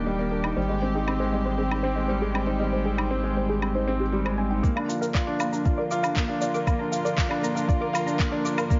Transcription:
0.00 0.54 D#1 medium
0.00 4.59 D#3 medium
0.00 0.06 G3 medium
0.00 0.52 G3 medium
0.00 0.19 A#3 medium
0.00 0.53 A#3 medium
0.00 0.31 D4 medium
0.00 0.44 D#4 medium
0.00 4.59 G4 medium
0.06 0.18 G3 medium
0.06 0.10 D#5 medium
0.19 0.26 A#3 medium
0.19 0.28 D5 medium
0.31 0.39 D4 medium
0.31 0.35 A#4 medium
0.44 0.56 D#4 medium
0.44 0.48 G5 medium
0.44 low woodblock medium
0.56 4.61 G#1 medium
0.56 0.69 G3 medium
0.56 4.60 C4 medium
0.56 0.66 C5 medium
0.69 0.77 G#3 medium
0.69 0.73 D#5 medium
0.82 0.90 C4 medium
0.82 0.92 C5 medium
0.95 1.07 D#4 medium
0.95 0.99 G#4 medium
1.07 1.20 C4 medium
1.07 1.11 G5 medium
1.07 low woodblock medium
1.20 1.28 G#3 medium
1.20 1.30 C5 medium
1.32 1.45 G3 medium
1.32 1.37 D#5 medium
1.45 1.58 G#3 medium
1.45 1.55 C5 medium
1.58 1.70 C4 medium
1.58 1.62 G#4 medium
1.71 1.83 D#4 medium
1.71 1.75 G5 medium
1.71 low woodblock medium
1.83 1.96 C4 medium
1.83 1.93 C5 loud
1.96 2.09 G#3 medium
1.96 2.00 D#5 medium
2.08 2.21 G3 medium
2.08 2.18 C5 medium
2.22 2.29 G#3 medium
2.22 2.26 G#4 medium
2.34 2.42 C4 medium
2.34 2.38 G5 medium
2.34 low woodblock medium
2.47 2.59 D#4 medium
2.47 2.57 C5 medium
2.59 2.72 G3 medium
2.59 2.64 D#5 medium
2.72 2.80 G#3 medium
2.72 2.82 C5 medium
2.85 2.93 C4 medium
2.85 2.89 G#4 medium
2.98 3.10 D#4 medium
2.98 3.02 G5 medium
2.98 low woodblock medium
3.11 3.23 C4 medium
3.11 3.20 C5 medium
3.24 3.31 G#3 medium
3.24 3.28 D#5 medium
3.37 3.49 G3 medium
3.37 3.46 C5 medium
3.49 3.62 G#3 medium
3.49 3.53 G#4 loud
3.62 3.74 C4 medium
3.62 3.66 G5 medium
3.62 low woodblock medium
3.75 3.87 D#4 medium
3.75 3.84 C5 medium
3.87 4.00 C4 medium
3.87 3.91 C5 medium
4.00 4.12 G#3 medium
4.00 4.04 G4 medium
4.12 4.25 G3 medium
4.12 4.19 G4 medium
4.25 4.33 G#3 medium
4.25 4.32 C5 medium
4.25 low woodblock medium
4.38 4.46 C4 medium
4.38 4.42 G#5 medium
4.50 4.63 D#4 medium
4.50 4.57 G5 medium
4.63 8.80 A#1 medium
4.63 8.80 D3 medium
4.63 8.80 F3 medium
4.63 8.80 A#3 medium
4.63 4.76 A#3 medium
4.63 8.80 F4 medium
4.63 8.80 A#4 medium
4.63 4.67 D6 medium
4.63 kick medium
4.63 shaker soft
4.76 4.83 D4 medium
4.76 4.86 F5 medium
4.76 low woodblock medium
4.89 4.96 F4 medium
4.89 4.93 A#5 medium
4.89 shaker medium
5.01 5.14 A#4 medium
5.01 5.11 F5 medium
5.01 shaker soft
5.14 5.27 F4 medium
5.14 5.18 D5 medium
5.14 kick medium
5.14 clap medium
5.14 shaker soft
5.27 5.35 D4 medium
5.27 5.31 D6 medium
5.40 5.52 A#3 medium
5.40 5.49 F5 loud
5.40 low woodblock medium
5.40 shaker medium
5.53 5.65 D4 medium
5.53 5.56 A#5 medium
5.53 shaker soft
5.65 5.78 F4 medium
5.65 5.75 F5 medium
5.65 kick medium
5.65 shaker soft
5.78 5.91 A#4 medium
5.78 5.82 D5 medium
5.91 6.03 F4 medium
5.91 5.95 D6 medium
5.91 shaker medium
6.03 6.16 D4 medium
6.03 6.13 F5 medium
6.03 low woodblock medium
6.03 shaker soft
6.16 6.29 A#3 medium
6.16 6.20 A#5 medium
6.16 kick medium
6.16 clap medium
6.16 shaker soft
6.29 6.36 D4 medium
6.29 6.38 F5 medium
6.42 6.50 F4 medium
6.42 6.45 D5 medium
6.42 shaker medium
6.54 6.67 A#4 medium
6.54 6.58 D6 medium
6.54 shaker soft
6.67 6.79 A#3 medium
6.67 6.76 F5 medium
6.67 kick medium
6.67 low woodblock medium
6.67 shaker soft
6.79 6.87 D4 medium
6.79 6.83 A#5 medium
6.92 7.00 F4 medium
6.92 7.02 F5 medium
6.92 shaker medium
7.05 7.17 A#4 medium
7.05 7.09 D5 loud
7.05 shaker soft
7.17 7.30 F4 medium
7.17 7.22 D6 medium
7.17 kick loud
7.17 clap medium
7.17 shaker soft
7.29 7.37 D4 medium
7.29 7.40 F5 medium
7.29 low woodblock medium
7.42 7.55 A#3 medium
7.42 7.47 A#5 medium
7.42 shaker medium
7.55 7.68 D4 medium
7.55 7.65 F5 medium
7.55 shaker soft
7.68 7.80 F4 medium
7.68 7.73 D5 loud
7.68 kick loud
7.68 shaker soft
7.81 7.93 A#4 medium
7.81 7.85 D6 medium
7.93 8.06 F4 loud
7.93 8.03 F5 loud
7.93 low woodblock medium
7.93 shaker medium
8.06 8.19 D4 medium
8.06 8.11 A#5 medium
8.06 shaker soft
8.19 8.31 A#3 medium
8.19 8.29 F5 medium
8.19 kick loud
8.19 clap medium
8.19 shaker soft
8.31 8.39 D4 medium
8.31 8.36 D5 medium
8.45 8.52 F4 medium
8.45 8.49 D6 medium
8.45 shaker medium
8.58 8.70 A#4 medium
8.58 8.67 F5 medium
8.58 low woodblock medium
8.58 shaker soft
8.70 8.80 A#3 medium
8.70 8.74 A#5 medium
8.70 kick loud
8.70 shaker soft

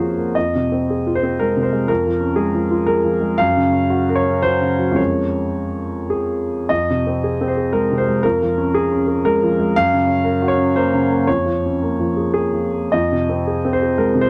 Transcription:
0.00 0.30 F2 soft
0.00 0.37 F3 soft
0.00 0.17 A#3 soft
0.00 0.38 C#4 soft
0.00 0.37 F4 soft
0.00 0.38 F#4 medium
0.00 0.37 G#4 medium
0.00 0.38 A#4 medium
0.00 0.37 C5 medium
0.00 0.37 C#5 medium
0.17 0.36 A#3 soft
0.35 1.86 F2 soft
0.35 1.13 D#5 medium
0.55 0.82 C3 soft
0.72 0.99 C4 soft
0.90 1.16 G#4 soft
1.07 1.33 F4 soft
1.15 1.40 C5 medium
1.23 1.50 C4 soft
1.39 1.67 G#3 soft
1.39 1.65 A#4 medium
1.57 1.83 C3 soft
1.63 1.89 C5 medium
1.73 1.89 G#3 soft
1.88 3.36 F2 medium
1.88 2.38 A#4 medium
2.07 2.32 F3 soft
2.21 2.47 C#4 soft
2.36 2.64 G#3 soft
2.36 2.87 G#4 medium
2.54 2.81 F3 soft
2.71 2.98 F4 soft
2.86 3.16 G#3 soft
2.86 3.40 A#4 medium
3.04 3.33 F3 soft
3.21 3.40 G#3 soft
3.38 4.93 F#2 medium
3.38 4.17 F5 medium
3.57 3.85 C#3 soft
3.73 4.02 C#4 soft
3.90 4.19 F#4 medium
4.09 4.37 A#4 medium
4.15 4.43 C#5 medium
4.26 4.55 C#4 soft
4.42 4.72 F#3 soft
4.42 4.97 C5 medium
4.61 4.90 C#3 soft
4.79 4.98 F#3 soft
4.91 6.63 F2 soft
4.91 6.64 G#3 soft
4.91 6.64 C#4 soft
4.96 6.65 A#4 soft
4.96 6.10 C#5 medium
6.10 6.70 G#4 medium
6.69 8.20 F2 medium
6.69 7.48 D#5 medium
6.90 7.17 C3 soft
7.07 7.34 C4 soft
7.24 7.50 G#4 soft
7.41 7.68 C4 soft
7.48 7.73 C5 medium
7.57 7.84 G#4 soft
7.73 8.00 G#3 soft
7.73 7.98 A#4 medium
7.92 8.18 C3 soft
7.98 8.23 C5 medium
8.08 8.24 G#3 soft
8.23 9.72 F2 medium
8.23 8.74 A#4 medium
8.42 8.68 F3 soft
8.58 8.84 C#4 soft
8.74 9.06 G#4 medium
8.92 9.18 C#4 soft
9.08 9.34 G#4 soft
9.25 9.52 G#3 medium
9.25 9.76 A#4 medium
9.43 9.70 F3 medium
9.60 9.77 G#3 soft
9.76 11.23 F#2 medium
9.76 10.50 F5 loud
9.93 10.19 C#3 soft
10.07 10.34 C#4 medium
10.24 10.51 A#4 medium
10.42 10.68 F#4 medium
10.48 10.74 C#5 medium
10.58 10.85 C#4 soft
10.76 11.03 A#3 medium
10.76 11.27 C5 medium
10.93 11.20 C#3 soft
11.12 11.28 A#3 soft
11.27 12.89 F2 soft
11.27 12.34 C#5 medium
11.46 11.74 F3 soft
11.66 11.93 C#4 soft
11.82 12.10 A#3 soft
12.00 12.27 F3 soft
12.17 12.32 G#4 soft
12.34 12.65 A#3 soft
12.34 12.92 G#4 medium
12.53 12.85 F3 soft
12.73 12.92 A#3 soft
12.92 14.30 F2 medium
12.92 13.72 D#5 medium
13.12 13.40 C3 soft
13.29 13.57 C4 soft
13.47 13.74 G#4 soft
13.65 13.91 C4 soft
13.73 13.97 C5 medium
13.83 14.08 G#4 soft
13.98 14.24 G#3 soft
13.98 14.22 A#4 medium
14.15 14.30 C3 soft
14.21 14.30 C5 medium

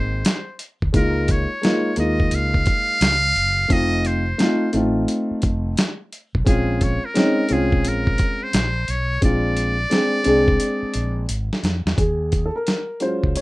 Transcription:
0.00 0.22 G#1 medium
0.00 0.19 A#3 medium
0.00 0.20 C4 medium
0.00 0.21 D#4 medium
0.00 0.21 G#4 medium
0.00 0.62 C5 medium
0.25 snare loud
0.25 closed hi-hat loud
0.59 closed hi-hat medium
0.82 0.93 D2 medium
0.82 kick medium
0.93 1.45 C#2 loud
0.93 1.45 G#3 medium
0.93 1.46 A#3 medium
0.93 1.46 D#4 medium
0.93 1.47 F4 medium
0.93 kick loud
0.93 closed hi-hat medium
0.97 1.33 A#4 medium
1.28 1.99 C#5 medium
1.28 kick medium
1.28 closed hi-hat medium
1.62 1.90 G#3 medium
1.62 1.90 A#3 medium
1.62 1.91 D#4 medium
1.62 1.91 F4 medium
1.62 snare loud
1.62 closed hi-hat medium
1.96 2.29 D#2 medium
1.96 2.95 G#3 medium
1.96 2.96 A#3 medium
1.96 2.96 D#4 medium
1.96 2.97 F4 medium
1.96 2.36 D#5 medium
1.96 closed hi-hat medium
2.20 kick medium
2.31 2.63 C#2 medium
2.31 3.74 F5 loud
2.31 closed hi-hat medium
2.54 kick medium
2.66 kick medium
2.66 closed hi-hat medium
3.01 3.32 C#2 loud
3.01 snare loud
3.01 closed hi-hat loud
3.35 3.67 F#1 medium
3.35 closed hi-hat medium
3.68 4.32 F1 loud
3.68 4.21 A3 medium
3.68 4.22 C4 medium
3.68 4.22 D#4 medium
3.68 4.23 F4 medium
3.68 kick loud
3.68 closed hi-hat medium
3.73 4.08 D#5 loud
4.05 4.75 C5 medium
4.05 closed hi-hat medium
4.38 4.66 A3 medium
4.38 4.66 C4 medium
4.38 4.67 D#4 medium
4.38 4.68 F4 medium
4.38 snare loud
4.38 closed hi-hat medium
4.73 5.05 A1 medium
4.73 5.72 A3 medium
4.73 5.72 C4 medium
4.73 5.73 D#4 medium
4.73 5.73 F4 medium
4.73 closed hi-hat medium
5.08 closed hi-hat medium
5.31 muted fretless electric bass stroke soft
5.42 5.74 F1 loud
5.42 kick loud
5.42 closed hi-hat medium
5.77 snare loud
5.77 closed hi-hat loud
6.12 closed hi-hat medium
6.35 6.46 B1 medium
6.35 kick medium
6.45 6.97 A#1 loud
6.45 6.97 G#3 medium
6.45 6.98 C4 medium
6.45 6.98 C#4 medium
6.45 6.99 F4 medium
6.45 6.85 G#4 medium
6.45 kick loud
6.45 closed hi-hat medium
6.81 7.07 C#5 medium
6.81 kick medium
6.81 closed hi-hat medium
7.05 7.54 A#4 medium
7.14 7.42 G#3 medium
7.14 7.42 C4 medium
7.14 7.43 C#4 medium
7.14 7.43 D#4 medium
7.14 snare loud
7.14 closed hi-hat medium
7.48 7.85 C2 medium
7.48 8.47 G#3 medium
7.48 8.48 C4 medium
7.48 8.48 C#4 medium
7.48 8.49 F4 medium
7.48 closed hi-hat medium
7.53 7.90 G#4 medium
7.72 kick medium
7.85 8.15 A#1 loud
7.85 8.45 A#4 medium
7.85 closed hi-hat loud
8.07 kick medium
8.18 kick medium
8.18 closed hi-hat medium
8.43 8.92 C5 loud
8.53 8.84 A#1 medium
8.53 snare loud
8.53 closed hi-hat loud
8.88 9.19 B1 medium
8.88 9.23 C#5 loud
8.88 closed hi-hat medium
9.21 9.84 A#1 loud
9.21 9.74 G#3 medium
9.21 9.74 C4 medium
9.21 9.75 D4 medium
9.21 9.75 F4 medium
9.21 11.26 D5 loud
9.21 kick medium
9.21 closed hi-hat medium
9.57 closed hi-hat medium
9.90 10.17 G#3 medium
9.90 10.18 C4 medium
9.90 10.19 D4 medium
9.90 10.19 G#4 medium
9.90 snare loud
9.90 closed hi-hat medium
10.24 10.57 C2 loud
10.24 11.23 G#3 medium
10.24 11.23 C4 medium
10.24 11.24 D4 medium
10.24 11.25 G#4 medium
10.24 closed hi-hat medium
10.48 kick medium
10.60 closed hi-hat loud
10.83 muted fretless electric bass stroke medium
10.94 11.26 A#1 medium
10.94 closed hi-hat medium
11.29 11.49 G#1 medium
11.29 closed hi-hat loud
11.53 snare medium
11.63 11.83 F2 medium
11.63 snare loud
11.63 closed hi-hat medium
11.86 11.97 E2 medium
11.86 snare medium
11.98 12.49 D#2 loud
11.98 12.47 G#4 medium
11.98 kick loud
11.98 closed hi-hat medium
12.32 kick medium
12.32 closed hi-hat medium
12.46 12.55 A4 medium
12.56 12.99 A#4 medium
12.67 snare loud
12.67 closed hi-hat medium
13.00 13.41 F#3 soft
13.00 13.41 G#3 soft
13.00 13.41 C#4 soft
13.00 13.41 F4 medium
13.00 13.37 C5 medium
13.00 closed hi-hat medium
13.23 13.35 C#2 medium
13.23 kick medium
13.36 13.41 C#5 medium
13.36 closed hi-hat medium

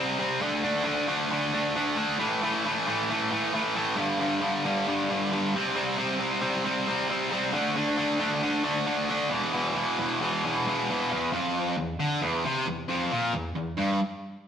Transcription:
0.00 0.17 C3 medium
0.00 0.18 G3 loud
0.00 0.18 C4 loud
0.19 0.40 C3 medium
0.19 0.41 G3 loud
0.19 0.41 C4 loud
0.41 0.63 D3 medium
0.41 0.64 A3 loud
0.41 0.63 D4 loud
0.64 0.83 D3 medium
0.64 0.85 A3 medium
0.64 0.84 D4 loud
0.85 1.07 D3 medium
0.85 1.08 A3 medium
0.85 1.07 D4 medium
1.08 1.29 D3 medium
1.08 1.30 A3 medium
1.08 1.30 D4 loud
1.30 1.52 D3 loud
1.30 1.52 A3 loud
1.30 1.53 D4 loud
1.53 1.75 D3 medium
1.53 1.75 A3 medium
1.53 1.75 D4 loud
1.76 1.95 D3 medium
1.76 1.96 A3 medium
1.76 1.96 D4 loud
1.96 2.18 D3 loud
1.96 2.19 A3 medium
1.96 2.19 D4 medium
2.19 2.42 A2 loud
2.19 2.42 E3 loud
2.19 2.43 A3 loud
2.43 2.64 A2 medium
2.43 2.65 E3 medium
2.43 2.65 A3 loud
2.65 2.86 A2 medium
2.65 2.87 E3 medium
2.65 2.87 A3 medium
2.87 3.09 A2 medium
2.87 3.10 E3 loud
2.87 3.10 A3 loud
3.10 3.30 A2 loud
3.10 3.31 E3 loud
3.10 3.32 A3 loud
3.31 3.53 A2 medium
3.31 3.53 E3 medium
3.31 3.53 A3 loud
3.54 3.74 A2 medium
3.54 3.75 E3 loud
3.54 3.76 A3 loud
3.76 3.97 A2 medium
3.76 3.97 E3 medium
3.76 3.98 A3 loud
3.96 4.19 G2 loud
3.96 4.19 D3 loud
3.96 4.20 G3 loud
4.20 4.40 G2 medium
4.20 4.41 D3 medium
4.20 4.42 G3 medium
4.42 4.64 G2 medium
4.42 4.64 D3 medium
4.42 4.66 G3 medium
4.65 4.86 G2 medium
4.65 4.87 D3 medium
4.65 4.87 G3 loud
4.88 5.08 G2 loud
4.88 5.10 D3 loud
4.88 5.09 G3 loud
5.10 5.31 G2 medium
5.10 5.31 D3 medium
5.10 5.32 G3 loud
5.32 5.53 G2 medium
5.32 5.53 D3 medium
5.32 5.54 G3 loud
5.54 5.74 C3 loud
5.54 5.75 G3 loud
5.54 5.75 C4 loud
5.75 5.97 C3 loud
5.75 5.97 G3 loud
5.75 5.97 C4 loud
5.98 6.18 C3 medium
5.98 6.19 G3 medium
5.98 6.19 C4 medium
6.19 6.40 C3 medium
6.19 6.40 G3 medium
6.19 6.40 C4 loud
6.41 6.63 C3 loud
6.41 6.63 G3 medium
6.41 6.64 C4 loud
6.64 6.86 C3 medium
6.64 6.87 G3 loud
6.64 6.87 C4 loud
6.87 7.08 C3 medium
6.87 7.09 G3 loud
6.87 7.09 C4 loud
7.09 7.30 C3 medium
7.09 7.31 G3 medium
7.09 7.32 C4 medium
7.31 7.52 C3 medium
7.31 7.53 G3 medium
7.31 7.53 C4 loud
7.52 7.74 D3 loud
7.52 7.75 A3 loud
7.52 7.76 D4 loud
7.75 7.96 D3 medium
7.75 7.96 A3 medium
7.75 7.97 D4 medium
7.97 8.18 D3 loud
7.97 8.19 A3 loud
7.97 8.19 D4 loud
8.19 8.41 D3 medium
8.19 8.42 A3 medium
8.19 8.42 D4 loud
8.42 8.63 D3 medium
8.42 8.63 A3 loud
8.42 8.63 D4 loud
8.64 8.85 D3 medium
8.64 8.86 A3 loud
8.64 8.86 D4 medium
8.86 9.08 D3 medium
8.86 9.09 A3 loud
8.86 9.09 D4 loud
9.09 9.30 D3 medium
9.09 9.30 A3 loud
9.09 9.31 D4 loud
9.30 9.52 E2 loud
9.30 9.53 B2 loud
9.30 9.54 E3 loud
9.54 9.73 E2 medium
9.54 9.74 B2 medium
9.54 9.75 E3 loud
9.75 9.97 E2 medium
9.75 9.98 B2 medium
9.75 9.98 E3 medium
9.98 10.19 E2 medium
9.98 10.20 B2 loud
9.98 10.20 E3 loud
10.20 10.43 E2 loud
10.20 10.43 B2 loud
10.20 10.44 E3 loud
10.44 10.66 E2 medium
10.44 10.66 B2 medium
10.44 10.67 E3 loud
10.67 10.89 E2 medium
10.67 10.89 B2 medium
10.67 10.90 E3 loud
10.90 11.09 E2 medium
10.90 11.10 B2 medium
10.90 11.11 E3 loud
11.10 11.32 E2 loud
11.33 11.77 F2 loud
11.78 11.96 E2 medium
12.00 12.21 D3 loud
12.21 12.43 E2 loud
12.44 12.66 C3 loud
12.66 12.84 E2 medium
12.88 13.10 F2 loud
13.11 13.33 A#2 loud
13.33 13.51 E2 medium
13.56 13.74 E2 medium
13.78 14.00 G2 loud

